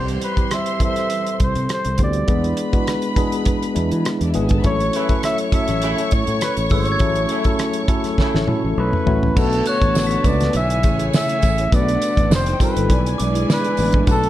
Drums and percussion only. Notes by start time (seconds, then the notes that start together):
0.08 closed hi-hat
0.21 closed hi-hat
0.37 kick, closed hi-hat
0.51 cross-stick, closed hi-hat
0.66 closed hi-hat
0.80 kick, closed hi-hat
0.96 cross-stick, closed hi-hat
1.10 closed hi-hat
1.27 closed hi-hat
1.40 kick, closed hi-hat
1.55 closed hi-hat
1.69 cross-stick, closed hi-hat
1.85 closed hi-hat
1.98 kick, closed hi-hat
2.13 closed hi-hat
2.28 kick, closed hi-hat
2.44 closed hi-hat
2.57 closed hi-hat
2.73 kick, closed hi-hat
2.87 cross-stick, closed hi-hat
3.02 closed hi-hat
3.16 kick, closed hi-hat
3.32 closed hi-hat
3.45 kick, closed hi-hat
3.63 closed hi-hat
3.76 closed hi-hat
3.91 closed hi-hat
4.05 cross-stick, closed hi-hat
4.21 closed hi-hat
4.34 closed hi-hat
4.49 kick, closed hi-hat
4.64 kick, closed hi-hat
4.80 closed hi-hat
4.93 closed hi-hat
5.09 kick, closed hi-hat
5.23 cross-stick, closed hi-hat
5.38 closed hi-hat
5.52 kick, closed hi-hat
5.68 cross-stick, closed hi-hat
5.82 closed hi-hat
5.98 closed hi-hat
6.11 kick, closed hi-hat
6.27 closed hi-hat
6.41 cross-stick, closed hi-hat
6.57 closed hi-hat
6.70 kick, open hi-hat
6.85 closed hi-hat
6.99 kick, closed hi-hat
7.16 closed hi-hat
7.29 closed hi-hat
7.44 kick, closed hi-hat
7.59 cross-stick, closed hi-hat
7.73 closed hi-hat
7.88 kick, closed hi-hat
8.04 cross-stick, closed hi-hat
8.18 kick, snare
8.35 snare
8.48 high tom
8.93 mid tom
9.07 floor tom
9.23 floor tom
9.37 kick, crash, tambourine
9.53 closed hi-hat
9.66 closed hi-hat, tambourine
9.82 kick, closed hi-hat
9.95 snare, tambourine
10.11 closed hi-hat
10.24 kick, closed hi-hat, tambourine
10.40 snare, closed hi-hat
10.53 closed hi-hat, tambourine
10.70 closed hi-hat
10.83 kick, closed hi-hat, tambourine
10.99 closed hi-hat
11.13 snare, tambourine
11.29 closed hi-hat
11.42 kick, closed hi-hat, tambourine
11.58 closed hi-hat
11.72 kick, closed hi-hat, tambourine
11.88 closed hi-hat
12.02 closed hi-hat, tambourine
12.17 kick, closed hi-hat
12.31 snare, tambourine
12.46 closed hi-hat
12.60 kick, closed hi-hat, tambourine
12.76 closed hi-hat
12.90 kick, closed hi-hat
13.06 closed hi-hat
13.20 closed hi-hat, tambourine
13.35 closed hi-hat
13.50 snare, tambourine
13.64 closed hi-hat
13.77 open hi-hat, tambourine
13.92 kick, closed hi-hat
14.07 kick, closed hi-hat, tambourine
14.23 closed hi-hat